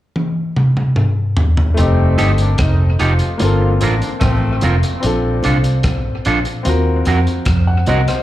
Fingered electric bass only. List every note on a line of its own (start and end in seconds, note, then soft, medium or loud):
1.79 2.15 F1 loud
2.20 2.56 G1 medium
2.59 2.96 F1 medium
3.01 3.19 F1 medium
3.42 3.78 G1 medium
3.82 4.00 A1 medium
4.22 4.59 A1 medium
4.64 4.82 F1 medium
5.04 5.40 A#1 loud
5.46 5.85 C2 medium
5.85 6.21 A#1 medium
6.27 6.44 A#1 medium
6.66 7.03 D#2 medium
7.07 7.25 F2 medium
7.47 7.83 F2 medium
7.88 8.06 C2 medium